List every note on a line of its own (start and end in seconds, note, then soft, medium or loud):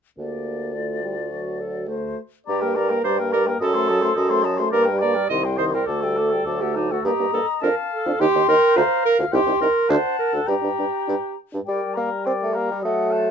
0.18 2.14 D2 soft
0.18 0.76 A#3 soft
0.18 0.70 G4 soft
0.18 1.89 D5 soft
0.74 1.02 A3 soft
0.74 1.32 F4 soft
1.03 1.15 G3 soft
1.31 1.89 F#3 soft
1.31 1.62 F#4 soft
1.60 1.90 A4 soft
1.88 2.18 A3 soft
1.88 2.18 F#4 soft
1.88 2.18 C5 soft
2.46 2.98 G2 medium
2.46 2.64 G3 soft
2.46 2.77 G4 medium
2.46 2.62 D5 soft
2.46 2.63 A#5 medium
2.61 2.78 A#3 soft
2.61 2.76 A#4 soft
2.61 2.78 G5 soft
2.75 2.92 G3 soft
2.75 3.04 A#4 medium
2.75 2.92 D5 soft
2.75 2.91 A#5 medium
2.89 3.04 A#3 soft
2.89 3.03 A#4 soft
2.89 3.02 G5 soft
3.03 3.54 G2 medium
3.03 3.22 G3 soft
3.03 3.17 C5 medium
3.03 3.20 D5 soft
3.03 3.19 A#5 soft
3.18 3.36 A#3 soft
3.18 3.34 A#4 soft
3.18 3.33 G5 soft
3.31 3.49 G3 soft
3.31 3.45 A#4 medium
3.31 3.48 D5 soft
3.31 3.48 A#5 soft
3.46 3.61 A#3 soft
3.46 3.59 A#4 medium
3.46 3.61 G5 soft
3.60 4.10 F#2 medium
3.60 3.76 F#3 medium
3.60 4.43 A4 medium
3.60 3.75 D#5 medium
3.60 3.77 A5 medium
3.74 3.91 A3 medium
3.74 3.90 C5 medium
3.74 3.91 C6 medium
3.88 4.04 F#3 medium
3.88 4.03 D#5 medium
3.88 4.04 A5 medium
4.02 4.15 A3 medium
4.02 4.15 C5 medium
4.02 4.16 C6 medium
4.15 4.66 F#2 medium
4.15 4.32 F#3 medium
4.15 4.31 D#5 medium
4.15 4.32 A5 medium
4.30 4.47 A3 soft
4.30 4.44 C5 medium
4.30 4.46 C6 medium
4.43 4.61 F#3 medium
4.43 4.59 D#5 medium
4.43 4.61 A5 medium
4.57 4.73 A3 medium
4.57 4.70 C5 medium
4.57 4.71 C6 medium
4.70 5.23 G2 medium
4.70 4.91 A#3 medium
4.70 4.85 A#4 medium
4.70 4.85 D5 medium
4.70 4.87 A#5 medium
4.84 5.00 A#4 soft
4.84 5.03 G5 medium
4.89 5.05 G3 medium
4.98 5.15 D5 soft
4.98 5.29 D5 medium
4.98 5.16 A#5 medium
5.03 5.18 A#3 medium
5.14 5.30 G3 soft
5.14 5.27 A#4 soft
5.14 5.29 G5 soft
5.27 5.81 C2 medium
5.27 5.46 D#3 soft
5.27 5.45 D#5 soft
5.27 5.42 D#5 medium
5.27 5.46 C6 soft
5.43 5.59 G3 soft
5.43 5.59 C5 soft
5.43 5.61 G5 soft
5.57 5.76 D#3 medium
5.57 5.65 C5 medium
5.57 5.73 D#5 soft
5.57 5.76 C6 soft
5.72 5.87 G3 soft
5.72 5.88 A#4 medium
5.72 5.85 C5 soft
5.72 5.86 G5 soft
5.86 6.39 D2 medium
5.86 6.05 A3 soft
5.86 6.63 A4 medium
5.86 6.03 D5 soft
5.86 6.05 A5 soft
6.01 6.20 G3 soft
6.01 6.18 A4 soft
6.01 6.19 G5 soft
6.16 6.35 A3 soft
6.16 6.31 D5 soft
6.16 6.33 A5 soft
6.30 6.47 G3 soft
6.30 6.45 A4 soft
6.30 6.46 G5 soft
6.45 6.98 D2 medium
6.45 6.63 F#3 soft
6.45 6.62 D5 soft
6.45 6.63 A5 soft
6.60 6.79 A3 soft
6.60 6.75 G4 medium
6.60 6.77 A4 soft
6.60 6.77 F#5 soft
6.75 6.94 F#3 soft
6.75 6.90 D#4 medium
6.75 6.92 D5 soft
6.75 6.93 A5 soft
6.91 7.05 A3 soft
6.91 7.06 F#4 medium
6.91 7.03 A4 soft
6.91 7.03 F#5 soft
7.04 7.11 G2 medium
7.04 7.12 A#3 medium
7.04 7.33 G4 medium
7.04 7.65 D#5 soft
7.04 7.62 A#5 medium
7.19 7.26 G2 soft
7.19 7.26 A#3 soft
7.33 7.40 G2 soft
7.33 7.39 A#3 soft
7.33 7.46 A4 medium
7.61 7.69 F2 medium
7.61 7.69 D4 medium
7.61 7.76 A#4 medium
7.61 8.22 F5 medium
7.61 8.21 A5 medium
7.92 8.20 A4 medium
8.06 8.12 F2 medium
8.06 8.12 D4 medium
8.20 8.27 D#2 medium
8.20 8.26 D#4 medium
8.20 8.48 G4 loud
8.20 8.78 G5 medium
8.20 8.78 C6 medium
8.35 8.41 D#2 medium
8.35 8.41 D#4 medium
8.48 8.55 D#2 soft
8.48 8.54 D#4 medium
8.48 8.79 A#4 loud
8.76 8.83 D2 medium
8.76 8.82 F4 medium
8.76 9.05 C5 medium
8.76 9.34 F5 medium
8.76 9.07 A#5 medium
9.05 9.18 A#4 loud
9.19 9.25 D2 medium
9.19 9.25 F4 medium
9.32 9.39 C2 medium
9.32 9.39 D#4 medium
9.32 9.60 G4 medium
9.32 9.72 G5 medium
9.32 9.91 C6 medium
9.47 9.53 C2 medium
9.47 9.53 D#4 medium
9.61 9.67 C2 soft
9.61 9.68 D#4 medium
9.61 9.91 A#4 medium
9.89 9.96 D2 medium
9.89 9.97 D4 medium
9.89 10.18 C5 medium
9.89 10.48 F#5 medium
9.89 10.49 A5 medium
10.19 10.36 A#4 medium
10.33 10.40 D2 soft
10.33 10.40 D4 soft
10.33 10.48 A4 medium
10.47 10.55 G2 medium
10.47 10.54 D4 medium
10.47 11.36 G4 medium
10.47 11.37 G5 soft
10.47 11.37 A#5 soft
10.62 10.70 G2 soft
10.62 10.69 D4 soft
10.78 10.86 G2 soft
10.78 10.85 D4 soft
11.07 11.15 G2 medium
11.07 11.14 D4 medium
11.53 11.60 G2 soft
11.53 11.59 D4 soft
11.66 12.84 G3 soft
11.66 11.81 G3 soft
11.66 11.98 A#4 soft
11.66 11.97 D5 soft
11.66 11.95 G5 soft
11.94 12.10 A#3 soft
11.94 12.27 G4 soft
11.94 12.27 A#4 soft
11.94 12.26 A#5 soft
12.25 12.33 C4 medium
12.25 12.56 A#4 soft
12.25 12.55 D5 soft
12.25 12.55 G5 soft
12.43 12.58 A3 soft
12.53 12.70 A#3 medium
12.53 12.83 G4 soft
12.53 12.82 A#4 soft
12.53 12.83 A#5 soft
12.72 12.84 G3 soft
12.82 13.31 F#3 soft
12.82 13.31 A3 medium
12.82 13.13 A4 soft
12.82 13.13 D#5 soft
12.82 13.13 F#5 soft
13.11 13.31 C5 soft
13.11 13.31 F#5 soft
13.11 13.31 A5 soft